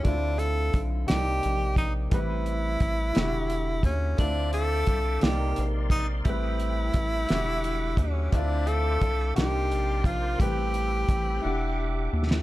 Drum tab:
HH |x-x-x-x-x-x-|x-x-x-x-x-x-|x-x-x-x-x-x-|x-x-x-x-x-x-|
SD |------o-----|------o-----|------o-----|------o-----|
BD |o---o-----o-|o---o-----o-|o---o-----o-|o---o-----o-|

HH |x-x-x-x-x-x-|x-x-x-------|
SD |------o-----|-----------o|
BD |o---o-----o-|o---o-------|